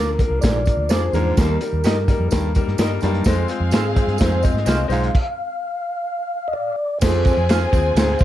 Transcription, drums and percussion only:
0.19 kick medium
0.19 closed hi-hat medium
0.19 tambourine soft
0.42 kick medium
0.42 snare loud
0.42 closed hi-hat loud
0.42 tambourine loud
0.66 kick medium
0.66 closed hi-hat medium
0.66 tambourine medium
0.89 snare loud
0.89 closed hi-hat medium
0.89 tambourine loud
1.13 closed hi-hat medium
1.13 tambourine medium
1.37 kick loud
1.37 snare medium
1.37 closed hi-hat medium
1.37 tambourine medium
1.61 closed hi-hat medium
1.61 tambourine medium
1.84 snare loud
1.84 closed hi-hat loud
1.84 tambourine medium
2.08 kick medium
2.08 closed hi-hat medium
2.08 tambourine medium
2.31 kick medium
2.31 snare loud
2.31 closed hi-hat loud
2.31 tambourine loud
2.55 kick medium
2.55 closed hi-hat medium
2.55 tambourine medium
2.67 snare soft
2.78 snare loud
2.78 closed hi-hat medium
2.78 tambourine loud
3.01 closed hi-hat medium
3.01 tambourine medium
3.14 closed hi-hat soft
3.24 kick loud
3.24 snare loud
3.24 closed hi-hat medium
3.24 tambourine loud
3.48 closed hi-hat medium
3.48 tambourine medium
3.71 snare loud
3.71 closed hi-hat loud
3.71 tambourine medium
3.96 kick medium
3.96 closed hi-hat medium
3.96 tambourine medium
4.08 closed hi-hat soft
4.18 kick medium
4.18 snare loud
4.18 closed hi-hat loud
4.18 tambourine loud
4.43 kick medium
4.43 closed hi-hat medium
4.43 tambourine medium
4.57 snare soft
4.66 snare loud
4.66 closed hi-hat medium
4.66 tambourine loud
4.90 closed hi-hat medium
4.90 tambourine medium
5.04 closed hi-hat soft
5.15 kick loud
5.15 crash medium
7.01 kick loud
7.01 snare loud
7.01 crash loud
7.01 tambourine loud
7.25 kick loud
7.25 ride medium
7.25 tambourine medium
7.49 snare loud
7.49 ride medium
7.49 tambourine medium
7.73 kick medium
7.73 ride medium
7.73 tambourine medium
7.96 snare loud
7.96 ride loud
7.96 tambourine loud
8.19 kick medium
8.19 ride medium
8.19 tambourine medium

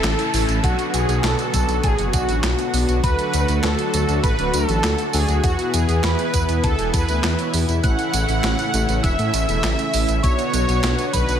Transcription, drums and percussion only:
0.04 snare loud
0.04 clap loud
0.04 closed hi-hat medium
0.04 tambourine soft
0.19 closed hi-hat soft
0.19 tambourine soft
0.34 open hi-hat medium
0.34 tambourine medium
0.49 closed hi-hat soft
0.49 tambourine soft
0.64 kick loud
0.64 closed hi-hat medium
0.64 tambourine soft
0.79 closed hi-hat soft
0.79 tambourine soft
0.94 closed hi-hat loud
0.94 tambourine medium
1.09 closed hi-hat soft
1.09 tambourine soft
1.24 snare loud
1.24 clap medium
1.24 closed hi-hat medium
1.24 tambourine soft
1.39 closed hi-hat soft
1.39 tambourine soft
1.54 kick medium
1.54 closed hi-hat loud
1.54 tambourine medium
1.69 closed hi-hat soft
1.69 tambourine soft
1.84 kick loud
1.84 closed hi-hat medium
1.84 tambourine soft
1.99 closed hi-hat soft
1.99 tambourine soft
2.13 kick loud
2.13 closed hi-hat loud
2.13 tambourine medium
2.29 closed hi-hat soft
2.29 tambourine soft
2.44 snare loud
2.44 clap loud
2.44 closed hi-hat medium
2.44 tambourine soft
2.59 closed hi-hat soft
2.59 tambourine soft
2.74 open hi-hat medium
2.74 tambourine medium
2.89 closed hi-hat soft
2.89 tambourine soft
3.04 kick loud
3.04 closed hi-hat medium
3.04 tambourine soft
3.19 closed hi-hat soft
3.19 tambourine soft
3.34 closed hi-hat loud
3.34 tambourine medium
3.48 closed hi-hat soft
3.48 tambourine soft
3.63 snare loud
3.63 clap medium
3.63 closed hi-hat medium
3.63 tambourine soft
3.79 closed hi-hat soft
3.79 tambourine soft
3.94 closed hi-hat loud
3.94 tambourine medium
4.09 closed hi-hat soft
4.09 tambourine soft
4.24 kick loud
4.24 closed hi-hat medium
4.24 tambourine soft
4.39 closed hi-hat soft
4.39 tambourine soft
4.54 closed hi-hat medium
4.54 tambourine medium
4.69 closed hi-hat soft
4.69 tambourine soft
4.84 snare loud
4.84 clap medium
4.84 closed hi-hat medium
4.84 tambourine soft
4.98 closed hi-hat soft
4.98 tambourine soft
5.13 open hi-hat medium
5.13 tambourine medium
5.29 closed hi-hat soft
5.29 tambourine soft
5.44 kick loud
5.44 closed hi-hat medium
5.44 tambourine soft
5.59 closed hi-hat soft
5.59 tambourine soft
5.74 closed hi-hat loud
5.74 tambourine medium
5.89 closed hi-hat soft
5.89 tambourine soft
6.04 snare loud
6.04 clap medium
6.04 closed hi-hat medium
6.04 tambourine soft
6.19 closed hi-hat soft
6.19 tambourine soft
6.34 kick medium
6.34 closed hi-hat medium
6.34 tambourine medium
6.49 closed hi-hat soft
6.49 tambourine soft
6.64 kick loud
6.64 closed hi-hat medium
6.64 tambourine soft
6.79 closed hi-hat soft
6.79 tambourine soft
6.94 kick loud
6.94 closed hi-hat medium
6.94 tambourine medium
7.09 closed hi-hat soft
7.09 tambourine soft
7.24 snare loud
7.24 clap medium
7.24 closed hi-hat medium
7.24 tambourine soft
7.39 closed hi-hat soft
7.39 tambourine soft
7.54 open hi-hat medium
7.54 tambourine medium
7.69 closed hi-hat soft
7.69 tambourine soft
7.84 kick loud
7.84 closed hi-hat medium
7.84 tambourine soft
7.99 closed hi-hat soft
7.99 tambourine soft
8.14 closed hi-hat medium
8.14 tambourine medium
8.29 closed hi-hat soft
8.29 tambourine soft
8.44 snare loud
8.44 clap medium
8.44 closed hi-hat medium
8.44 tambourine soft
8.59 closed hi-hat soft
8.59 tambourine soft
8.74 closed hi-hat medium
8.74 tambourine medium
8.89 closed hi-hat soft
8.89 tambourine soft
9.04 kick loud
9.04 closed hi-hat medium
9.04 tambourine soft
9.19 closed hi-hat soft
9.19 tambourine soft
9.34 closed hi-hat medium
9.34 tambourine medium
9.49 closed hi-hat soft
9.49 tambourine soft
9.64 snare loud
9.64 clap loud
9.64 closed hi-hat medium
9.64 tambourine soft
9.79 closed hi-hat soft
9.79 tambourine soft
9.94 open hi-hat medium
9.94 tambourine medium
10.09 closed hi-hat soft
10.09 tambourine soft
10.24 kick loud
10.24 closed hi-hat medium
10.24 tambourine soft
10.39 closed hi-hat soft
10.39 tambourine soft
10.54 closed hi-hat medium
10.54 tambourine medium
10.69 closed hi-hat soft
10.69 tambourine soft
10.84 snare loud
10.84 clap medium
10.84 closed hi-hat medium
10.84 tambourine soft
10.99 closed hi-hat soft
10.99 tambourine soft
11.14 kick medium
11.14 closed hi-hat medium
11.14 tambourine medium
11.29 closed hi-hat soft
11.29 tambourine soft

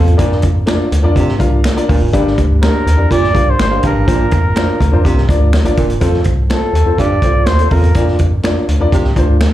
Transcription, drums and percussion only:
0.08 closed hi-hat soft
0.19 kick loud
0.19 closed hi-hat medium
0.32 snare soft
0.42 kick medium
0.42 closed hi-hat medium
0.67 finger snap medium
0.67 snare loud
0.67 closed hi-hat medium
0.92 closed hi-hat medium
1.16 kick medium
1.16 closed hi-hat medium
1.28 snare soft
1.40 kick medium
1.40 closed hi-hat medium
1.64 finger snap medium
1.64 snare medium
1.64 closed hi-hat medium
1.77 closed hi-hat medium
1.89 kick medium
1.89 open hi-hat soft
2.13 kick loud
2.13 closed hi-hat medium
2.27 snare soft
2.38 kick medium
2.38 closed hi-hat medium
2.62 finger snap medium
2.62 snare loud
2.62 closed hi-hat medium
2.87 closed hi-hat medium
3.11 kick medium
3.11 closed hi-hat medium
3.24 snare soft
3.35 kick medium
3.35 closed hi-hat medium
3.59 finger snap medium
3.59 snare medium
3.59 closed hi-hat medium
3.83 kick medium
3.83 closed hi-hat medium
4.08 kick loud
4.08 closed hi-hat loud
4.31 kick medium
4.31 closed hi-hat medium
4.56 finger snap medium
4.56 snare loud
4.56 closed hi-hat medium
4.80 kick medium
4.80 closed hi-hat medium
5.05 kick medium
5.05 closed hi-hat medium
5.17 snare soft
5.29 kick medium
5.29 closed hi-hat medium
5.53 finger snap medium
5.53 snare medium
5.53 closed hi-hat medium
5.65 closed hi-hat medium
5.77 kick medium
5.77 closed hi-hat medium
5.90 closed hi-hat soft
6.01 kick medium
6.01 closed hi-hat medium
6.14 snare soft
6.24 kick medium
6.24 closed hi-hat medium
6.50 finger snap medium
6.50 snare loud
6.50 closed hi-hat medium
6.75 closed hi-hat medium
6.98 kick medium
6.98 closed hi-hat medium
7.22 kick medium
7.22 closed hi-hat medium
7.46 finger snap medium
7.46 snare medium
7.46 closed hi-hat medium
7.59 closed hi-hat soft
7.71 kick medium
7.71 open hi-hat soft
7.83 closed hi-hat soft
7.94 kick loud
7.94 closed hi-hat medium
8.08 snare soft
8.19 kick medium
8.19 closed hi-hat medium
8.43 finger snap medium
8.43 snare loud
8.43 closed hi-hat medium
8.69 closed hi-hat medium
8.92 kick medium
8.92 closed hi-hat medium
9.04 snare soft
9.16 kick medium
9.16 closed hi-hat medium
9.41 finger snap medium
9.41 snare loud
9.41 closed hi-hat medium

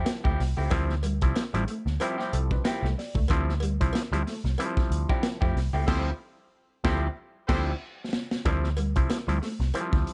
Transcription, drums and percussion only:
0.06 snare loud
0.06 closed hi-hat medium
0.06 cowbell medium
0.25 kick medium
0.40 snare soft
0.40 open hi-hat medium
0.70 kick loud
0.70 closed hi-hat medium
0.70 cowbell medium
0.90 snare soft
1.03 closed hi-hat medium
1.03 cowbell medium
1.21 kick medium
1.21 closed hi-hat medium
1.36 snare loud
1.36 closed hi-hat medium
1.36 cowbell medium
1.54 closed hi-hat soft
1.68 closed hi-hat medium
1.87 snare soft
2.00 closed hi-hat medium
2.00 cowbell medium
2.19 snare soft
2.33 closed hi-hat medium
2.51 kick loud
2.65 snare loud
2.65 closed hi-hat loud
2.65 cowbell medium
2.85 snare soft
2.99 snare soft
2.99 open hi-hat medium
3.15 kick medium
3.28 kick loud
3.28 closed hi-hat medium
3.28 cowbell medium
3.49 snare soft
3.60 closed hi-hat medium
3.60 cowbell medium
3.81 kick medium
3.81 closed hi-hat medium
3.93 snare loud
3.93 closed hi-hat loud
3.93 cowbell medium
4.13 closed hi-hat soft
4.27 snare soft
4.27 open hi-hat medium
4.45 snare soft
4.58 closed hi-hat loud
4.58 cowbell medium
4.77 kick loud
4.77 snare soft
4.92 closed hi-hat medium
5.09 kick medium
5.23 snare loud
5.23 closed hi-hat loud
5.23 cowbell medium
5.42 kick loud
5.57 snare soft
5.57 open hi-hat medium
5.88 kick loud
5.88 snare loud
5.88 crash medium
6.85 kick loud
6.85 snare loud
7.49 kick loud
7.49 snare loud
7.49 crash medium
8.13 snare loud
8.31 snare medium
8.45 kick loud
8.45 closed hi-hat medium
8.45 cowbell medium
8.64 snare soft
8.77 closed hi-hat medium
8.77 cowbell medium
8.96 kick medium
8.96 closed hi-hat medium
9.10 snare loud
9.10 closed hi-hat loud
9.10 cowbell medium
9.29 closed hi-hat soft
9.43 snare soft
9.43 open hi-hat medium
9.61 snare soft
9.74 closed hi-hat loud
9.74 cowbell medium
9.93 kick loud
9.93 snare soft
10.07 closed hi-hat medium

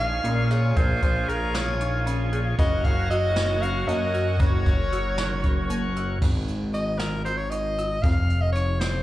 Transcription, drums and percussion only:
0.24 closed hi-hat medium
0.50 snare soft
0.50 closed hi-hat medium
0.76 kick loud
0.76 closed hi-hat medium
1.02 kick medium
1.02 closed hi-hat medium
1.29 closed hi-hat medium
1.54 snare loud
1.54 closed hi-hat medium
1.80 closed hi-hat medium
2.07 closed hi-hat medium
2.33 closed hi-hat medium
2.59 kick loud
2.59 closed hi-hat medium
2.84 kick medium
2.84 closed hi-hat medium
3.11 closed hi-hat medium
3.36 snare loud
3.36 closed hi-hat medium
3.62 closed hi-hat medium
3.88 closed hi-hat medium
4.14 closed hi-hat medium
4.39 kick loud
4.39 closed hi-hat medium
4.66 kick medium
4.66 closed hi-hat medium
4.92 closed hi-hat medium
5.18 snare medium
5.18 closed hi-hat medium
5.43 kick medium
5.43 closed hi-hat medium
5.70 closed hi-hat medium
5.96 closed hi-hat medium
6.22 kick loud
6.22 crash medium
6.48 closed hi-hat medium
6.74 closed hi-hat medium
6.99 snare loud
6.99 closed hi-hat medium
7.26 closed hi-hat medium
7.51 closed hi-hat medium
7.78 closed hi-hat medium
8.04 kick loud
8.04 closed hi-hat medium
8.30 closed hi-hat soft
8.55 closed hi-hat soft
8.81 snare loud
8.81 closed hi-hat medium

